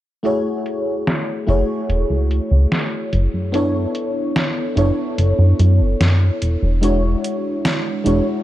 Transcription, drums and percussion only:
0.25 closed hi-hat medium
0.66 closed hi-hat medium
1.07 snare loud
1.07 closed hi-hat medium
1.49 closed hi-hat medium
1.90 closed hi-hat medium
2.31 closed hi-hat medium
2.72 snare loud
2.72 closed hi-hat medium
3.13 closed hi-hat medium
3.54 closed hi-hat medium
3.95 closed hi-hat medium
4.36 snare loud
4.36 closed hi-hat medium
4.77 closed hi-hat medium
5.18 closed hi-hat medium
5.59 closed hi-hat medium
6.01 snare loud
6.01 closed hi-hat medium
6.42 closed hi-hat medium
6.83 closed hi-hat medium
7.24 closed hi-hat medium
7.65 snare loud
7.65 closed hi-hat medium
8.06 closed hi-hat medium

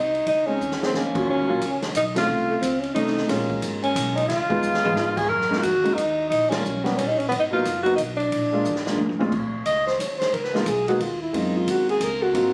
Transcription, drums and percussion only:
0.15 ride soft
0.26 kick soft
0.26 ride medium
0.61 hi-hat pedal soft
0.71 snare soft
0.83 snare medium
0.94 snare soft
1.15 kick medium
1.15 crash medium
1.28 kick soft
1.61 kick soft
1.61 hi-hat pedal medium
1.61 ride medium
1.82 snare medium
1.82 ride soft
1.95 kick soft
1.95 hi-hat pedal soft
1.95 ride medium
2.16 snare medium
2.16 ride medium
2.62 kick soft
2.62 hi-hat pedal medium
2.62 ride medium
2.83 ride soft
2.96 kick soft
2.96 ride medium
3.07 snare soft
3.17 snare soft
3.29 kick soft
3.29 snare soft
3.29 ride medium
3.50 kick soft
3.62 kick soft
3.62 hi-hat pedal soft
3.62 ride medium
3.83 ride soft
3.96 kick soft
3.96 hi-hat pedal medium
3.96 ride medium
4.17 ride soft
4.29 kick soft
4.29 snare soft
4.29 ride medium
4.50 kick medium
4.63 hi-hat pedal medium
4.74 snare soft
4.85 floor tom medium
4.96 snare medium
5.17 kick medium
5.17 crash medium
5.30 kick soft
5.41 snare soft
5.53 snare soft
5.63 kick soft
5.63 hi-hat pedal medium
5.63 ride medium
5.85 ride soft
5.97 kick soft
5.97 hi-hat pedal soft
5.97 ride medium
6.31 kick soft
6.31 ride medium
6.52 snare medium
6.52 ride medium
6.65 hi-hat pedal soft
6.86 snare soft
6.86 ride soft
6.98 kick soft
6.98 hi-hat pedal soft
6.98 ride medium
7.20 ride soft
7.31 kick soft
7.31 ride medium
7.65 kick soft
7.65 hi-hat pedal medium
7.65 ride medium
7.86 ride soft
7.98 kick soft
7.98 hi-hat pedal medium
7.98 ride medium
8.20 ride soft
8.32 kick soft
8.32 ride medium
8.64 floor tom soft
8.64 hi-hat pedal soft
8.76 snare soft
8.87 snare medium
8.98 high tom medium
9.09 high tom medium
9.20 high tom medium
9.32 kick medium
9.32 crash medium
9.66 kick soft
9.66 hi-hat pedal soft
9.66 ride medium
9.87 snare soft
9.99 kick soft
9.99 hi-hat pedal medium
9.99 ride medium
10.21 snare soft
10.21 ride soft
10.33 kick soft
10.33 ride soft
10.44 snare soft
10.55 snare soft
10.66 kick soft
10.66 hi-hat pedal soft
10.66 ride medium
10.88 ride soft
11.00 kick soft
11.00 ride medium
11.33 kick soft
11.33 ride medium
11.67 kick soft
11.67 hi-hat pedal soft
11.67 ride medium
11.89 ride soft
12.00 kick soft
12.00 hi-hat pedal medium
12.00 ride medium
12.34 kick soft
12.34 ride medium

